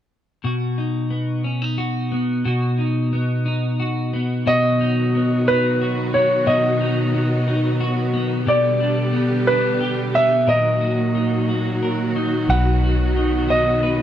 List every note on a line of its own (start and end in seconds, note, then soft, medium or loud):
0.44 2.44 B2 soft
0.44 1.78 F#4 soft
0.78 1.44 D#4 soft
1.10 2.11 B3 soft
1.44 1.62 C#4 soft
1.62 2.77 D#4 soft
1.78 2.45 F#4 soft
2.12 3.12 B3 soft
2.45 4.45 B2 medium
2.45 3.79 F#4 soft
2.78 3.45 D#4 soft
3.13 4.13 B3 soft
3.46 4.80 D#4 soft
3.80 4.46 F#4 soft
4.13 5.15 B3 soft
4.46 6.45 B2 medium
4.46 8.44 D#3 soft
4.46 8.44 F#3 soft
4.46 10.45 B3 soft
4.46 5.81 F#4 medium
4.46 8.44 F#4 medium
4.46 5.43 D#5 medium
4.81 5.46 D#4 soft
5.15 6.14 B3 soft
5.47 6.79 D#4 soft
5.47 6.16 B4 medium
5.82 6.46 F#4 soft
6.14 7.14 B3 soft
6.14 6.48 C#5 medium
6.46 8.45 B2 medium
6.46 7.79 F#4 soft
6.46 7.44 D#5 medium
6.81 7.46 D#4 soft
7.14 8.13 B3 soft
7.48 8.55 D#4 soft
7.81 8.47 F#4 soft
8.14 8.54 B3 soft
8.46 10.48 B2 medium
8.46 10.47 D3 medium
8.46 10.47 G3 soft
8.46 9.79 G4 soft
8.46 10.47 G4 medium
8.46 9.52 D5 medium
8.80 9.46 D4 soft
9.13 10.13 B3 soft
9.47 10.55 D4 soft
9.47 10.17 B4 medium
9.81 10.47 G4 medium
10.14 10.55 B3 soft
10.14 10.46 E5 medium
10.47 12.48 A#2 medium
10.47 12.47 A#2 medium
10.47 14.02 D#3 medium
10.47 14.02 F#3 medium
10.47 12.48 A#3 soft
10.47 14.02 F#4 medium
10.47 11.81 A#4 medium
10.47 11.45 D#5 medium
10.81 11.49 F#4 soft
11.15 12.16 D#4 soft
11.49 12.83 F#4 soft
11.83 12.49 A#4 soft
12.16 13.16 D#4 soft
12.49 14.02 B1 medium
12.49 14.02 B2 medium
12.49 14.02 B3 soft
12.49 13.83 B4 soft
12.49 13.46 F#5 medium
12.83 13.47 F#4 soft
13.17 14.02 D#4 soft
13.48 14.02 F#4 soft
13.48 14.02 D#5 medium
13.83 14.02 B4 soft